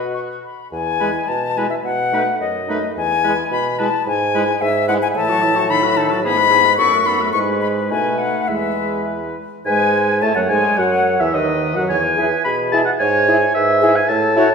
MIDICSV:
0, 0, Header, 1, 6, 480
1, 0, Start_track
1, 0, Key_signature, 4, "major"
1, 0, Tempo, 577478
1, 592, Time_signature, 2, 2, 24, 8
1, 1065, Tempo, 559180
1, 2985, Tempo, 545455
1, 6345, Tempo, 574163
1, 9225, Tempo, 550459
1, 12509, End_track
2, 0, Start_track
2, 0, Title_t, "Flute"
2, 0, Program_c, 0, 73
2, 114, Note_on_c, 0, 85, 58
2, 168, Note_off_c, 0, 85, 0
2, 357, Note_on_c, 0, 83, 57
2, 590, Note_off_c, 0, 83, 0
2, 596, Note_on_c, 0, 80, 98
2, 1063, Note_on_c, 0, 81, 85
2, 1075, Note_off_c, 0, 80, 0
2, 1315, Note_on_c, 0, 80, 78
2, 1328, Note_off_c, 0, 81, 0
2, 1415, Note_off_c, 0, 80, 0
2, 1420, Note_on_c, 0, 76, 78
2, 1471, Note_off_c, 0, 76, 0
2, 1545, Note_on_c, 0, 78, 103
2, 2018, Note_off_c, 0, 78, 0
2, 2029, Note_on_c, 0, 75, 83
2, 2498, Note_off_c, 0, 75, 0
2, 2513, Note_on_c, 0, 80, 112
2, 2974, Note_off_c, 0, 80, 0
2, 2980, Note_on_c, 0, 83, 91
2, 3223, Note_on_c, 0, 81, 100
2, 3237, Note_off_c, 0, 83, 0
2, 3467, Note_off_c, 0, 81, 0
2, 3478, Note_on_c, 0, 80, 110
2, 3949, Note_on_c, 0, 76, 105
2, 3962, Note_off_c, 0, 80, 0
2, 4182, Note_off_c, 0, 76, 0
2, 4187, Note_on_c, 0, 78, 110
2, 4240, Note_off_c, 0, 78, 0
2, 4308, Note_on_c, 0, 80, 102
2, 4361, Note_off_c, 0, 80, 0
2, 4428, Note_on_c, 0, 81, 126
2, 4906, Note_on_c, 0, 83, 108
2, 4919, Note_off_c, 0, 81, 0
2, 5141, Note_on_c, 0, 81, 105
2, 5154, Note_off_c, 0, 83, 0
2, 5378, Note_off_c, 0, 81, 0
2, 5387, Note_on_c, 0, 83, 127
2, 5849, Note_off_c, 0, 83, 0
2, 5854, Note_on_c, 0, 85, 117
2, 6104, Note_on_c, 0, 83, 108
2, 6117, Note_off_c, 0, 85, 0
2, 6329, Note_off_c, 0, 83, 0
2, 6334, Note_on_c, 0, 85, 113
2, 6389, Note_off_c, 0, 85, 0
2, 6576, Note_on_c, 0, 83, 83
2, 6630, Note_off_c, 0, 83, 0
2, 6817, Note_on_c, 0, 80, 96
2, 7054, Note_on_c, 0, 78, 80
2, 7066, Note_off_c, 0, 80, 0
2, 7300, Note_on_c, 0, 76, 85
2, 7312, Note_off_c, 0, 78, 0
2, 7796, Note_off_c, 0, 76, 0
2, 8284, Note_on_c, 0, 80, 103
2, 8723, Note_off_c, 0, 80, 0
2, 8750, Note_on_c, 0, 81, 87
2, 8800, Note_off_c, 0, 81, 0
2, 8860, Note_on_c, 0, 78, 74
2, 8910, Note_off_c, 0, 78, 0
2, 8986, Note_on_c, 0, 80, 93
2, 9213, Note_on_c, 0, 78, 102
2, 9226, Note_off_c, 0, 80, 0
2, 9572, Note_off_c, 0, 78, 0
2, 9577, Note_on_c, 0, 76, 78
2, 9695, Note_off_c, 0, 76, 0
2, 9700, Note_on_c, 0, 75, 91
2, 10056, Note_off_c, 0, 75, 0
2, 10061, Note_on_c, 0, 78, 86
2, 10186, Note_off_c, 0, 78, 0
2, 10426, Note_on_c, 0, 68, 77
2, 10542, Note_off_c, 0, 68, 0
2, 10913, Note_on_c, 0, 68, 81
2, 11025, Note_off_c, 0, 68, 0
2, 11396, Note_on_c, 0, 68, 89
2, 11507, Note_off_c, 0, 68, 0
2, 11866, Note_on_c, 0, 68, 94
2, 11980, Note_off_c, 0, 68, 0
2, 12353, Note_on_c, 0, 66, 93
2, 12461, Note_off_c, 0, 66, 0
2, 12509, End_track
3, 0, Start_track
3, 0, Title_t, "Oboe"
3, 0, Program_c, 1, 68
3, 0, Note_on_c, 1, 66, 61
3, 335, Note_off_c, 1, 66, 0
3, 837, Note_on_c, 1, 71, 64
3, 917, Note_off_c, 1, 71, 0
3, 1321, Note_on_c, 1, 71, 66
3, 1399, Note_off_c, 1, 71, 0
3, 1800, Note_on_c, 1, 71, 71
3, 1880, Note_off_c, 1, 71, 0
3, 2283, Note_on_c, 1, 71, 79
3, 2361, Note_off_c, 1, 71, 0
3, 2745, Note_on_c, 1, 71, 73
3, 2829, Note_off_c, 1, 71, 0
3, 3223, Note_on_c, 1, 71, 81
3, 3309, Note_off_c, 1, 71, 0
3, 3714, Note_on_c, 1, 71, 81
3, 3796, Note_off_c, 1, 71, 0
3, 4183, Note_on_c, 1, 71, 86
3, 4268, Note_off_c, 1, 71, 0
3, 4424, Note_on_c, 1, 76, 74
3, 4551, Note_on_c, 1, 73, 69
3, 4564, Note_off_c, 1, 76, 0
3, 4657, Note_on_c, 1, 76, 71
3, 4670, Note_off_c, 1, 73, 0
3, 4782, Note_on_c, 1, 73, 73
3, 4795, Note_off_c, 1, 76, 0
3, 4900, Note_off_c, 1, 73, 0
3, 4904, Note_on_c, 1, 69, 72
3, 5024, Note_on_c, 1, 71, 68
3, 5037, Note_off_c, 1, 69, 0
3, 5146, Note_on_c, 1, 69, 78
3, 5159, Note_off_c, 1, 71, 0
3, 5259, Note_on_c, 1, 71, 62
3, 5272, Note_off_c, 1, 69, 0
3, 5377, Note_off_c, 1, 71, 0
3, 5386, Note_on_c, 1, 68, 76
3, 5499, Note_on_c, 1, 71, 70
3, 5512, Note_off_c, 1, 68, 0
3, 5624, Note_on_c, 1, 68, 68
3, 5637, Note_off_c, 1, 71, 0
3, 5740, Note_on_c, 1, 71, 67
3, 5753, Note_off_c, 1, 68, 0
3, 5854, Note_off_c, 1, 71, 0
3, 5859, Note_on_c, 1, 69, 71
3, 5989, Note_on_c, 1, 71, 65
3, 6003, Note_off_c, 1, 69, 0
3, 6118, Note_on_c, 1, 69, 72
3, 6131, Note_off_c, 1, 71, 0
3, 6233, Note_on_c, 1, 71, 65
3, 6246, Note_off_c, 1, 69, 0
3, 6350, Note_off_c, 1, 71, 0
3, 6368, Note_on_c, 1, 71, 75
3, 6797, Note_off_c, 1, 71, 0
3, 6829, Note_on_c, 1, 71, 74
3, 7300, Note_off_c, 1, 71, 0
3, 7316, Note_on_c, 1, 71, 61
3, 8034, Note_off_c, 1, 71, 0
3, 8287, Note_on_c, 1, 80, 99
3, 8724, Note_off_c, 1, 80, 0
3, 8759, Note_on_c, 1, 81, 110
3, 8869, Note_off_c, 1, 81, 0
3, 8874, Note_on_c, 1, 78, 96
3, 8984, Note_on_c, 1, 80, 106
3, 8997, Note_off_c, 1, 78, 0
3, 9222, Note_on_c, 1, 78, 97
3, 9235, Note_off_c, 1, 80, 0
3, 9595, Note_on_c, 1, 76, 101
3, 9608, Note_off_c, 1, 78, 0
3, 9709, Note_on_c, 1, 75, 101
3, 9722, Note_off_c, 1, 76, 0
3, 10071, Note_off_c, 1, 75, 0
3, 10077, Note_on_c, 1, 78, 91
3, 10130, Note_off_c, 1, 78, 0
3, 10195, Note_on_c, 1, 80, 109
3, 10666, Note_off_c, 1, 80, 0
3, 10675, Note_on_c, 1, 83, 108
3, 10783, Note_off_c, 1, 83, 0
3, 10916, Note_on_c, 1, 81, 120
3, 10970, Note_off_c, 1, 81, 0
3, 11031, Note_on_c, 1, 78, 103
3, 11086, Note_off_c, 1, 78, 0
3, 11153, Note_on_c, 1, 80, 116
3, 11624, Note_off_c, 1, 80, 0
3, 11635, Note_on_c, 1, 76, 116
3, 11997, Note_on_c, 1, 80, 115
3, 12010, Note_off_c, 1, 76, 0
3, 12105, Note_on_c, 1, 81, 121
3, 12118, Note_off_c, 1, 80, 0
3, 12509, Note_off_c, 1, 81, 0
3, 12509, End_track
4, 0, Start_track
4, 0, Title_t, "Clarinet"
4, 0, Program_c, 2, 71
4, 0, Note_on_c, 2, 75, 82
4, 94, Note_off_c, 2, 75, 0
4, 829, Note_on_c, 2, 64, 71
4, 911, Note_off_c, 2, 64, 0
4, 1317, Note_on_c, 2, 64, 69
4, 1397, Note_off_c, 2, 64, 0
4, 1791, Note_on_c, 2, 63, 69
4, 1874, Note_off_c, 2, 63, 0
4, 2272, Note_on_c, 2, 63, 73
4, 2354, Note_off_c, 2, 63, 0
4, 2755, Note_on_c, 2, 64, 78
4, 2835, Note_off_c, 2, 64, 0
4, 3230, Note_on_c, 2, 64, 77
4, 3314, Note_off_c, 2, 64, 0
4, 3716, Note_on_c, 2, 64, 78
4, 3798, Note_off_c, 2, 64, 0
4, 4190, Note_on_c, 2, 64, 81
4, 4273, Note_off_c, 2, 64, 0
4, 4431, Note_on_c, 2, 64, 76
4, 4548, Note_on_c, 2, 66, 71
4, 4561, Note_off_c, 2, 64, 0
4, 4666, Note_on_c, 2, 64, 71
4, 4679, Note_off_c, 2, 66, 0
4, 4778, Note_on_c, 2, 66, 70
4, 4791, Note_off_c, 2, 64, 0
4, 4896, Note_off_c, 2, 66, 0
4, 4901, Note_on_c, 2, 63, 72
4, 5017, Note_on_c, 2, 66, 76
4, 5030, Note_off_c, 2, 63, 0
4, 5137, Note_on_c, 2, 63, 74
4, 5150, Note_off_c, 2, 66, 0
4, 5249, Note_on_c, 2, 66, 69
4, 5263, Note_off_c, 2, 63, 0
4, 5373, Note_off_c, 2, 66, 0
4, 5377, Note_on_c, 2, 64, 84
4, 5496, Note_on_c, 2, 68, 76
4, 5509, Note_off_c, 2, 64, 0
4, 5612, Note_on_c, 2, 64, 74
4, 5625, Note_off_c, 2, 68, 0
4, 5743, Note_on_c, 2, 68, 68
4, 5756, Note_off_c, 2, 64, 0
4, 5852, Note_off_c, 2, 68, 0
4, 5857, Note_on_c, 2, 63, 71
4, 5976, Note_on_c, 2, 66, 71
4, 5989, Note_off_c, 2, 63, 0
4, 6097, Note_on_c, 2, 63, 65
4, 6110, Note_off_c, 2, 66, 0
4, 6218, Note_on_c, 2, 66, 66
4, 6231, Note_off_c, 2, 63, 0
4, 6327, Note_off_c, 2, 66, 0
4, 6332, Note_on_c, 2, 64, 81
4, 6816, Note_on_c, 2, 63, 65
4, 6829, Note_off_c, 2, 64, 0
4, 7300, Note_on_c, 2, 64, 66
4, 7312, Note_off_c, 2, 63, 0
4, 8041, Note_off_c, 2, 64, 0
4, 8284, Note_on_c, 2, 71, 92
4, 8723, Note_off_c, 2, 71, 0
4, 8747, Note_on_c, 2, 73, 89
4, 9712, Note_on_c, 2, 71, 87
4, 9726, Note_off_c, 2, 73, 0
4, 10193, Note_off_c, 2, 71, 0
4, 10198, Note_on_c, 2, 73, 95
4, 10306, Note_off_c, 2, 73, 0
4, 10445, Note_on_c, 2, 71, 86
4, 10675, Note_off_c, 2, 71, 0
4, 10687, Note_on_c, 2, 68, 83
4, 11151, Note_off_c, 2, 68, 0
4, 11159, Note_on_c, 2, 73, 116
4, 11646, Note_on_c, 2, 71, 88
4, 11659, Note_off_c, 2, 73, 0
4, 12123, Note_on_c, 2, 69, 107
4, 12136, Note_off_c, 2, 71, 0
4, 12353, Note_off_c, 2, 69, 0
4, 12358, Note_on_c, 2, 73, 108
4, 12462, Note_off_c, 2, 73, 0
4, 12509, End_track
5, 0, Start_track
5, 0, Title_t, "French horn"
5, 0, Program_c, 3, 60
5, 0, Note_on_c, 3, 66, 72
5, 355, Note_off_c, 3, 66, 0
5, 841, Note_on_c, 3, 56, 67
5, 919, Note_off_c, 3, 56, 0
5, 1315, Note_on_c, 3, 56, 70
5, 1396, Note_off_c, 3, 56, 0
5, 1790, Note_on_c, 3, 57, 67
5, 1873, Note_off_c, 3, 57, 0
5, 2276, Note_on_c, 3, 57, 72
5, 2357, Note_off_c, 3, 57, 0
5, 2750, Note_on_c, 3, 56, 77
5, 2832, Note_off_c, 3, 56, 0
5, 3234, Note_on_c, 3, 56, 80
5, 3316, Note_off_c, 3, 56, 0
5, 3714, Note_on_c, 3, 56, 86
5, 3796, Note_off_c, 3, 56, 0
5, 4192, Note_on_c, 3, 56, 87
5, 4274, Note_off_c, 3, 56, 0
5, 4432, Note_on_c, 3, 52, 82
5, 4555, Note_on_c, 3, 54, 71
5, 4568, Note_off_c, 3, 52, 0
5, 4675, Note_on_c, 3, 52, 71
5, 4688, Note_off_c, 3, 54, 0
5, 4787, Note_on_c, 3, 54, 66
5, 4800, Note_off_c, 3, 52, 0
5, 4897, Note_off_c, 3, 54, 0
5, 4902, Note_on_c, 3, 51, 74
5, 5024, Note_on_c, 3, 54, 67
5, 5038, Note_off_c, 3, 51, 0
5, 5144, Note_on_c, 3, 51, 74
5, 5157, Note_off_c, 3, 54, 0
5, 5264, Note_on_c, 3, 54, 69
5, 5277, Note_off_c, 3, 51, 0
5, 5380, Note_off_c, 3, 54, 0
5, 5385, Note_on_c, 3, 59, 83
5, 5506, Note_on_c, 3, 56, 69
5, 5519, Note_off_c, 3, 59, 0
5, 5629, Note_on_c, 3, 59, 69
5, 5642, Note_off_c, 3, 56, 0
5, 5746, Note_on_c, 3, 56, 66
5, 5759, Note_off_c, 3, 59, 0
5, 5863, Note_off_c, 3, 56, 0
5, 5872, Note_on_c, 3, 59, 69
5, 5984, Note_on_c, 3, 57, 65
5, 5997, Note_off_c, 3, 59, 0
5, 6110, Note_on_c, 3, 59, 67
5, 6124, Note_off_c, 3, 57, 0
5, 6233, Note_on_c, 3, 57, 67
5, 6246, Note_off_c, 3, 59, 0
5, 6350, Note_off_c, 3, 57, 0
5, 6356, Note_on_c, 3, 56, 83
5, 6826, Note_on_c, 3, 57, 75
5, 6839, Note_off_c, 3, 56, 0
5, 7314, Note_on_c, 3, 56, 72
5, 7327, Note_off_c, 3, 57, 0
5, 8048, Note_off_c, 3, 56, 0
5, 8290, Note_on_c, 3, 56, 103
5, 8758, Note_on_c, 3, 57, 105
5, 8771, Note_off_c, 3, 56, 0
5, 8869, Note_off_c, 3, 57, 0
5, 8874, Note_on_c, 3, 54, 80
5, 8927, Note_off_c, 3, 54, 0
5, 8994, Note_on_c, 3, 56, 100
5, 9224, Note_on_c, 3, 54, 102
5, 9237, Note_off_c, 3, 56, 0
5, 9587, Note_off_c, 3, 54, 0
5, 9592, Note_on_c, 3, 52, 91
5, 9716, Note_on_c, 3, 51, 93
5, 9729, Note_off_c, 3, 52, 0
5, 10077, Note_on_c, 3, 54, 98
5, 10090, Note_off_c, 3, 51, 0
5, 10197, Note_off_c, 3, 54, 0
5, 10446, Note_on_c, 3, 64, 88
5, 10526, Note_off_c, 3, 64, 0
5, 10926, Note_on_c, 3, 64, 96
5, 11006, Note_off_c, 3, 64, 0
5, 11409, Note_on_c, 3, 64, 98
5, 11488, Note_off_c, 3, 64, 0
5, 11887, Note_on_c, 3, 64, 96
5, 11965, Note_off_c, 3, 64, 0
5, 12347, Note_on_c, 3, 64, 101
5, 12430, Note_off_c, 3, 64, 0
5, 12509, End_track
6, 0, Start_track
6, 0, Title_t, "Bassoon"
6, 0, Program_c, 4, 70
6, 0, Note_on_c, 4, 47, 60
6, 351, Note_off_c, 4, 47, 0
6, 598, Note_on_c, 4, 40, 74
6, 989, Note_off_c, 4, 40, 0
6, 1069, Note_on_c, 4, 47, 75
6, 1468, Note_off_c, 4, 47, 0
6, 1548, Note_on_c, 4, 47, 77
6, 1949, Note_off_c, 4, 47, 0
6, 2030, Note_on_c, 4, 42, 67
6, 2428, Note_off_c, 4, 42, 0
6, 2508, Note_on_c, 4, 40, 78
6, 2906, Note_off_c, 4, 40, 0
6, 2984, Note_on_c, 4, 47, 83
6, 3388, Note_off_c, 4, 47, 0
6, 3466, Note_on_c, 4, 44, 87
6, 3868, Note_off_c, 4, 44, 0
6, 3949, Note_on_c, 4, 44, 89
6, 4348, Note_off_c, 4, 44, 0
6, 4421, Note_on_c, 4, 45, 90
6, 5369, Note_on_c, 4, 44, 83
6, 5382, Note_off_c, 4, 45, 0
6, 5851, Note_on_c, 4, 42, 84
6, 5864, Note_off_c, 4, 44, 0
6, 6338, Note_off_c, 4, 42, 0
6, 6344, Note_on_c, 4, 44, 81
6, 6818, Note_on_c, 4, 47, 74
6, 6830, Note_off_c, 4, 44, 0
6, 7161, Note_off_c, 4, 47, 0
6, 7303, Note_on_c, 4, 40, 65
6, 8028, Note_off_c, 4, 40, 0
6, 8284, Note_on_c, 4, 44, 89
6, 8723, Note_off_c, 4, 44, 0
6, 8759, Note_on_c, 4, 45, 86
6, 8811, Note_off_c, 4, 45, 0
6, 8879, Note_on_c, 4, 42, 91
6, 8987, Note_off_c, 4, 42, 0
6, 8992, Note_on_c, 4, 44, 87
6, 9097, Note_off_c, 4, 44, 0
6, 9225, Note_on_c, 4, 42, 87
6, 9583, Note_off_c, 4, 42, 0
6, 9594, Note_on_c, 4, 40, 87
6, 9709, Note_off_c, 4, 40, 0
6, 9714, Note_on_c, 4, 39, 91
6, 10069, Note_off_c, 4, 39, 0
6, 10078, Note_on_c, 4, 42, 89
6, 10195, Note_off_c, 4, 42, 0
6, 10201, Note_on_c, 4, 40, 87
6, 10598, Note_off_c, 4, 40, 0
6, 10681, Note_on_c, 4, 47, 84
6, 11077, Note_off_c, 4, 47, 0
6, 11161, Note_on_c, 4, 44, 101
6, 11558, Note_off_c, 4, 44, 0
6, 11640, Note_on_c, 4, 44, 93
6, 12034, Note_off_c, 4, 44, 0
6, 12111, Note_on_c, 4, 45, 101
6, 12505, Note_off_c, 4, 45, 0
6, 12509, End_track
0, 0, End_of_file